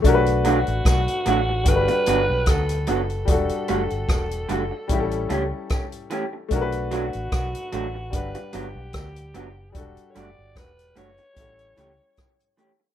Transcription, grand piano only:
X:1
M:4/4
L:1/8
Q:"Swing 16ths" 1/4=74
K:Bm
V:1 name="Grand piano"
[A,DF^AB]4 [G,DF=AB]4 | [G,DFA]4 [G,CEGA]4 | [A,DF^AB]4 [G,DBf]4 | [G,DFA]4 [G,CEA]4 |]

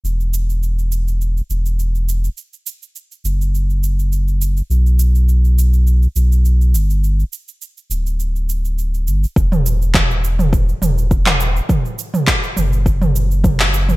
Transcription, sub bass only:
X:1
M:4/4
L:1/8
Q:"Swing 16ths" 1/4=103
K:G
V:1 name="Sub bass" clef=bass
E,,,4- E,,, E,,,3 | z3 F,,,4- F,,, | B,,,4- B,,, B,,,2 G,,,- | G,,, z2 D,,,4 G,,, |
E,,,4- E,,, E,,,3 | z3 F,,,4- F,,, |]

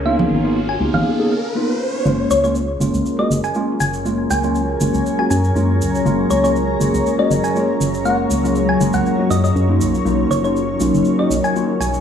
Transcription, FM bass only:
X:1
M:4/4
L:1/16
Q:"Swing 16ths" 1/4=120
K:F#
V:1 name="FM bass" clef=bass
C,,2 G,,,4 C,, G,,, z8 | F,,,2 C,,4 F,,, C,, z2 F,,, z3 F,,,2- | F,,,2 C,,4 F,,, C,, z2 F,,2 F,,2 C,,2 | F,,,2 C,,4 F,,, C,, z2 F,,, z3 F,,,2- |
F,,,2 C,,4 F,,, C,, z2 F,,2 F,,2 B,,,2 | B,,,2 F,,,4 B,,, F,,, z2 B,,, z3 B,,,2 |]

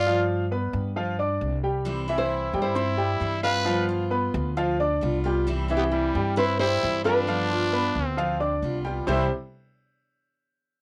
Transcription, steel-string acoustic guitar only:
X:1
M:4/4
L:1/8
Q:1/4=133
K:C
V:1 name="Steel-string acoustic guitar"
z8 | [C,E,G,CE] [E,G,CE]3 z2 [E,G,CE] [E,G,CE] | [G,B,F] [B,F]3 z2 [G,B,F] [B,F] | [C,E,G,CE] [E,G,CE]3 z2 [E,G,CE] [E,G,CE] |
[G,B,F] [B,F]3 z2 [G,B,F] [B,F] | [C,E,G,CE] z6 z |]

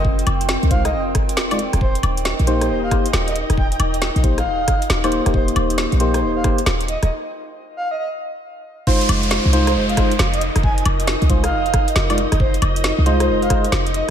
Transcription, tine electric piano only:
X:1
M:4/4
L:1/16
Q:"Swing 16ths" 1/4=136
K:Fm
V:1 name="Tine electric piano"
z6 [A,EFc] z6 [A,EF=d] z2 | z6 [B,EGc]4 [B,EGc] z4 z | z6 [B,EGc] z6 [B,EGc]2 [B,EGc]- | [B,EGc]6 [B,EGc]4 [B,EGc] z4 z |
z16 | [A,EFc]6 [A,EFc]4 [A,EFc] z4 z | z6 [A,EFc] z6 [A,EF=d] z2 | z6 [A,EFc]4 [A,EFc] z4 z |]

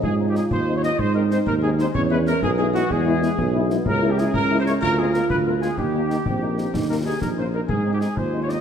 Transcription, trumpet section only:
X:1
M:6/8
L:1/16
Q:3/8=125
K:Ebmix
V:1 name="Trumpet section"
A3 G A2 c3 d e2 | c2 B2 c2 B2 A2 c2 | d2 =B2 _B2 ^G2 G2 _G2 | ^G8- G2 z2 |
B3 G A2 B3 c d2 | B2 A2 B2 =B2 _B2 A2 | G12- | G2 B2 A2 B2 c2 B2 |
A3 G A2 c3 d e2 |]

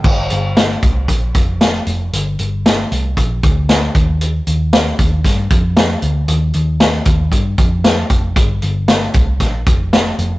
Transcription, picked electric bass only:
X:1
M:4/4
L:1/8
Q:1/4=115
K:Gm
V:1 name="Picked electric bass" clef=bass
G,,, G,,,2 C,, B,,, F,,,2 F,,, | G,,, G,,,2 C,, B,,, D,,2 E,,- | E,, E,,2 E,, G,, F,,2 D,, | E,, E,,2 E,, G,, F,,2 F,,, |
G,,, G,,,2 C,, B,,, F,,,2 F,,, |]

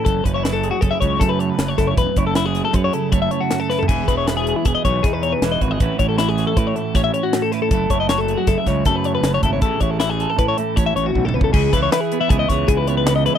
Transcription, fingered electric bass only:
X:1
M:5/4
L:1/16
Q:1/4=157
K:Alyd
V:1 name="Fingered electric bass" clef=bass
F,,,2 F,,,6 F,,, z C,,2 F,,4 F,,,2 F,,,2 | E,,, z F,,,6 F,,2 z2 F,,,2 z6 | E,,,2 E,,,6 E,,, z B,,,2 E,,4 E,,,2 G,,,2 | A,,, z A,,,6 A,,2 z2 A,,,2 z6 |
F,,,2 F,,,6 F,,, z C,,2 F,,4 F,,,2 G,,,2 | A,,, z A,,,6 A,,2 z2 A,,,2 A,,,2 B,,,2 C,,2 | C,,2 C,,2 z4 C,,2 C,,2 C,,8 |]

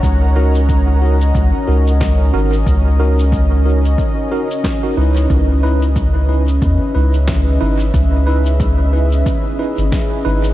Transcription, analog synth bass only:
X:1
M:4/4
L:1/16
Q:"Swing 16ths" 1/4=91
K:C#dor
V:1 name="Analog synth bass" clef=bass
C,,8 C,, z C,,4 G,,,2 | C,,8 z6 C,,2 | C,,8 E,, z C,,4 G,,,2 | C,,8 z3 G,,, z2 G,,,2 |]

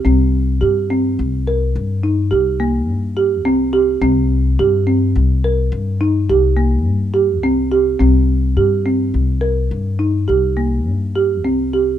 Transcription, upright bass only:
X:1
M:7/4
L:1/8
Q:1/4=106
K:Cm
V:1 name="Upright bass" clef=bass
C,,2 G,,2 C,,2 G,,2 C,,2 G,,2 C,,2 | C,,2 G,,2 C,,2 G,,2 C,,2 G,,2 C,,2 | C,,2 G,,2 C,,2 G,,2 C,,2 G,,2 C,,2 |]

